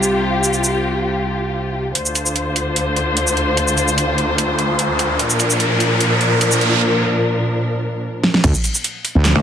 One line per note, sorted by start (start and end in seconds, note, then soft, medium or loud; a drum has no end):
0.00 1.92 C2 medium
0.00 1.92 C3 medium
0.00 1.92 F4 medium
0.00 1.92 G4 medium
0.00 shaker medium
0.44 shaker medium
0.53 shaker medium
0.64 shaker medium
1.95 5.16 D2 medium
1.95 5.16 D3 medium
1.95 5.16 F4 medium
1.95 5.16 C5 medium
1.95 closed hi-hat medium
1.95 riser medium
2.06 shaker medium
2.15 closed hi-hat medium
2.15 shaker medium
2.26 shaker medium
2.36 closed hi-hat medium
2.56 closed hi-hat medium
2.76 closed hi-hat medium
2.96 closed hi-hat medium
3.17 closed hi-hat medium
3.27 shaker medium
3.37 closed hi-hat medium
3.57 closed hi-hat medium
3.68 shaker medium
3.78 closed hi-hat medium
3.78 shaker medium
3.88 shaker medium
3.98 closed hi-hat medium
4.18 closed hi-hat medium
4.38 closed hi-hat medium
4.59 closed hi-hat medium
4.79 closed hi-hat medium
4.99 closed hi-hat medium
5.19 8.41 A#2 medium
5.19 8.41 F3 medium
5.19 8.41 D4 medium
5.19 8.41 A#4 medium
5.19 closed hi-hat medium
5.30 shaker medium
5.40 closed hi-hat medium
5.40 shaker medium
5.50 shaker medium
5.60 closed hi-hat medium
5.80 closed hi-hat medium
6.00 closed hi-hat medium
6.21 closed hi-hat soft
6.41 closed hi-hat medium
6.52 shaker medium
6.61 closed hi-hat medium
8.24 snare medium
8.34 snare medium
8.44 8.53 D2 loud
8.44 kick loud
8.44 closed hi-hat medium
8.44 crash loud
8.54 shaker medium
8.64 closed hi-hat medium
8.64 shaker medium
8.75 shaker medium
8.84 closed hi-hat medium
9.05 open hi-hat medium
9.15 9.34 D2 medium
9.25 snare loud
9.25 clap medium
9.25 closed hi-hat medium
9.36 9.42 D2 loud